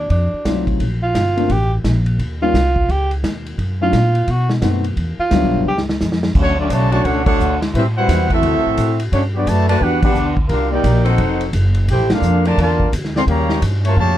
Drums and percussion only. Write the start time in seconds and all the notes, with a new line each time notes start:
0.10 kick, ride
0.45 kick, snare, hi-hat pedal, ride
0.67 kick, ride
0.80 kick, ride
1.15 kick, snare, hi-hat pedal, ride
1.37 ride
1.50 kick, ride
1.84 kick, snare, hi-hat pedal, ride
2.06 ride
2.19 kick, ride
2.54 kick, snare, hi-hat pedal, ride
2.76 kick
2.89 kick, ride
3.11 ride
3.24 kick, snare, hi-hat pedal, ride
3.46 ride
3.58 kick, ride
3.93 kick, snare, hi-hat pedal, ride
4.15 ride
4.28 kick, ride
4.50 snare
4.62 kick, snare, hi-hat pedal, ride
4.84 ride
4.97 kick, ride
5.31 kick, snare, hi-hat pedal, ride
5.78 snare
5.89 snare
6.01 snare, hi-hat pedal
6.12 snare
6.23 snare
6.35 kick, crash
6.70 kick, hi-hat pedal, ride
6.92 ride
7.05 kick, ride
7.26 kick, crash
7.40 hi-hat pedal
7.62 snare, ride
7.74 kick, ride
8.09 kick, snare, hi-hat pedal, ride
8.30 kick, ride
8.43 kick, ride
8.77 kick, hi-hat pedal, ride
9.00 ride
9.12 kick, ride
9.47 kick, hi-hat pedal, ride
9.69 ride
9.81 kick
10.03 kick, crash
10.15 hi-hat pedal
10.37 kick
10.49 kick, ride
10.84 kick, hi-hat pedal, ride
11.05 ride
11.18 kick, ride
11.41 ride
11.53 kick, hi-hat pedal, ride
11.75 ride
11.88 kick, ride
12.10 snare, ride
12.23 hi-hat pedal
12.45 ride
12.58 kick, ride
12.80 kick
12.93 kick, hi-hat pedal, ride
13.05 snare
13.16 snare
13.27 kick, ride
13.50 snare
13.62 kick, hi-hat pedal, ride
13.85 ride
13.97 kick